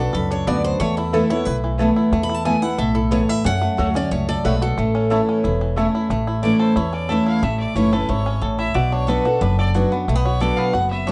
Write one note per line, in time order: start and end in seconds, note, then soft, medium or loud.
0.00 0.10 B2 medium
0.00 0.47 B3 medium
0.00 0.14 D4 medium
0.00 0.29 D4 medium
0.00 0.13 F#4 medium
0.00 0.13 A4 medium
0.13 0.42 C#2 medium
0.13 0.77 F#2 medium
0.13 0.60 A4 medium
0.13 0.30 B4 medium
0.31 0.63 D4 medium
0.31 0.47 C#5 medium
0.47 0.75 D2 medium
0.47 0.78 F#3 medium
0.47 0.56 B3 medium
0.47 0.81 B3 medium
0.47 0.79 B3 medium
0.47 0.79 D4 medium
0.47 0.56 F#4 medium
0.47 0.80 F#4 medium
0.47 0.56 D5 medium
0.47 0.64 D5 medium
0.47 0.56 F#5 medium
0.64 0.80 D4 medium
0.64 0.79 C5 medium
0.80 1.22 E2 medium
0.80 1.44 E2 medium
0.80 1.14 A3 medium
0.80 0.96 C#5 loud
0.97 1.13 E4 medium
0.97 1.30 E4 medium
1.13 1.30 E3 medium
1.13 1.80 A3 medium
1.13 1.30 A3 medium
1.13 1.22 B3 medium
1.13 1.31 B3 medium
1.13 1.22 E4 medium
1.13 1.30 E4 medium
1.13 1.30 A4 medium
1.13 1.22 B4 loud
1.13 1.23 A5 medium
1.30 1.47 B3 soft
1.30 1.45 E4 medium
1.30 1.46 E4 medium
1.30 1.45 C#5 medium
1.45 1.88 B1 medium
1.45 2.10 A2 medium
1.45 1.93 E4 medium
1.45 1.56 B4 medium
1.64 2.10 E3 medium
1.78 2.11 E3 medium
1.78 2.11 A3 medium
1.78 2.12 A3 medium
1.78 1.88 B3 medium
1.78 2.12 B3 medium
1.78 1.88 E4 medium
1.78 2.12 E4 medium
1.78 1.89 B4 medium
1.78 1.89 A5 loud
1.96 2.28 E4 medium
2.12 2.54 E2 medium
2.12 2.76 E2 medium
2.12 2.45 A3 medium
2.23 2.34 B5 medium
2.29 2.61 E4 medium
2.34 2.45 A5 medium
2.45 2.62 E3 medium
2.45 3.11 A3 medium
2.45 2.63 A3 medium
2.45 2.55 B3 medium
2.45 2.63 B3 medium
2.45 2.55 E4 medium
2.45 2.61 E4 medium
2.45 2.55 B4 loud
2.45 2.62 G#5 medium
2.45 2.55 A5 loud
2.62 2.79 B3 medium
2.62 2.78 E4 medium
2.62 2.94 E4 medium
2.62 2.78 F#5 medium
2.78 3.20 B1 medium
2.78 3.42 A2 medium
2.78 4.18 A4 medium
2.78 2.95 E5 medium
2.95 3.28 E4 soft
2.95 3.11 A4 soft
3.11 3.43 E2 medium
3.11 3.61 A3 medium
3.11 3.21 B3 medium
3.11 3.21 E4 medium
3.11 3.21 B4 medium
3.11 3.29 C#5 medium
3.11 3.21 A5 medium
3.29 3.45 E4 medium
3.29 3.45 E5 medium
3.44 4.08 F#2 medium
3.44 3.66 F#2 loud
3.44 3.95 C#4 medium
3.44 3.92 F#5 loud
3.61 4.11 A3 medium
3.77 4.07 D2 medium
3.77 3.94 F#3 medium
3.77 3.95 A3 medium
3.77 3.88 A3 medium
3.77 3.95 C#4 medium
3.77 4.25 F#4 medium
3.77 3.88 F#4 loud
3.77 3.93 F#4 medium
3.77 3.88 C#5 loud
3.77 3.88 F#5 medium
3.94 4.94 C#4 medium
3.94 4.12 C#4 soft
3.94 4.10 F#4 medium
3.94 4.11 D5 medium
4.11 4.40 C#2 medium
4.11 4.43 F#2 medium
4.11 4.44 A3 medium
4.11 4.28 C#5 medium
4.29 5.69 A4 medium
4.29 4.45 D5 loud
4.44 4.73 B1 medium
4.44 4.76 G#3 medium
4.44 4.54 A3 medium
4.44 4.77 A3 medium
4.44 4.54 F#4 medium
4.44 4.61 B4 medium
4.44 4.54 C#5 medium
4.44 4.54 F#5 loud
4.62 4.78 F#4 medium
4.62 5.40 A4 medium
4.78 5.19 A1 medium
4.78 5.41 A2 medium
4.78 5.10 A3 medium
4.95 5.27 C#4 medium
5.10 5.42 E3 medium
5.10 5.20 A3 loud
5.10 5.58 A3 medium
5.10 5.43 A3 medium
5.10 5.43 C#4 medium
5.10 5.20 E4 medium
5.10 5.44 E4 medium
5.10 5.20 C#5 loud
5.10 5.20 A5 loud
5.29 5.74 C#4 medium
5.44 5.86 E1 medium
5.44 6.08 E2 medium
5.44 5.91 E4 medium
5.61 6.07 E3 medium
5.76 6.09 E3 medium
5.76 5.86 A3 medium
5.76 6.09 A3 medium
5.76 6.10 C#4 medium
5.76 5.86 E4 medium
5.76 6.10 E4 medium
5.76 5.86 C#5 medium
5.76 5.87 A5 medium
5.95 6.11 E4 medium
6.10 6.52 A1 medium
6.10 6.74 A2 medium
6.10 6.43 A3 medium
6.27 6.75 E4 medium
6.43 6.75 E3 medium
6.43 6.90 A3 medium
6.43 6.75 A3 medium
6.43 6.76 C#4 medium
6.43 6.76 E4 medium
6.43 6.59 D5 medium
6.59 7.06 A4 medium
6.59 6.78 C5 medium
6.76 7.18 E2 medium
6.76 7.40 E2 medium
6.76 7.23 E4 medium
6.76 6.96 C#5 medium
6.93 7.39 C#4 medium
6.93 7.11 D5 medium
7.09 7.41 E3 medium
7.09 7.42 A3 medium
7.09 7.42 C#4 medium
7.09 7.42 E4 loud
7.09 7.56 A4 medium
7.09 7.26 E5 medium
7.26 7.73 E4 medium
7.26 7.45 F5 medium
7.43 7.64 A1 medium
7.43 8.06 A2 medium
7.43 7.74 A3 medium
7.43 7.59 E5 medium
7.60 7.77 D5 medium
7.75 8.04 F#1 medium
7.75 7.92 E3 medium
7.75 8.23 A3 medium
7.75 7.93 A3 loud
7.75 7.93 C#4 medium
7.75 7.91 E4 medium
7.75 7.95 C#5 loud
7.93 8.10 C#4 soft
7.93 8.08 E4 medium
7.93 8.39 A4 medium
7.93 8.11 B4 medium
8.09 8.37 G#1 medium
8.09 8.40 G#2 medium
8.09 8.56 E4 medium
8.09 8.42 C#5 medium
8.26 8.72 C#4 medium
8.41 8.70 A1 medium
8.41 8.73 A2 medium
8.41 8.75 A4 soft
8.59 8.75 E4 medium
8.59 8.76 E5 loud
8.74 9.17 B1 medium
8.74 9.38 B2 medium
8.74 9.25 F#4 medium
8.74 8.94 D5 medium
8.92 9.41 D4 medium
8.92 9.10 C#5 medium
9.07 9.24 F#3 medium
9.07 9.25 B3 medium
9.07 9.25 D4 medium
9.07 9.24 F#4 medium
9.07 9.55 A4 medium
9.07 9.27 B4 medium
9.25 9.42 D4 medium
9.25 9.41 F#4 medium
9.25 9.71 F#4 medium
9.25 9.43 A4 medium
9.41 9.83 F#1 medium
9.41 10.04 F#2 loud
9.41 9.88 D4 medium
9.41 9.58 B4 medium
9.58 10.05 A4 medium
9.58 9.68 D5 medium
9.74 9.91 F#3 medium
9.74 9.91 B3 medium
9.74 9.92 D4 medium
9.74 10.22 F#4 medium
9.74 9.91 F#4 loud
9.92 10.08 B3 medium
9.92 10.08 D4 medium
9.92 10.07 F#4 medium
10.08 10.50 B1 medium
10.08 10.71 B2 medium
10.08 10.15 A3 medium
10.15 10.41 B3 medium
10.25 10.71 F#4 medium
10.25 10.43 C#5 loud
10.40 10.72 F#3 medium
10.40 10.73 B3 medium
10.40 10.73 D4 medium
10.40 10.73 F#4 loud
10.40 10.88 A4 medium
10.40 10.59 D5 loud
10.57 10.91 B3 medium
10.57 10.75 F5 loud
10.73 11.12 F#1 medium
10.73 11.12 F#2 medium
10.73 11.12 F#4 medium
10.73 10.90 F#5 loud
10.91 11.12 B3 medium
10.91 11.08 E5 medium
11.07 11.12 F#3 medium
11.07 11.12 B3 medium
11.07 11.12 D4 medium
11.07 11.12 D4 loud
11.07 11.12 C#5 medium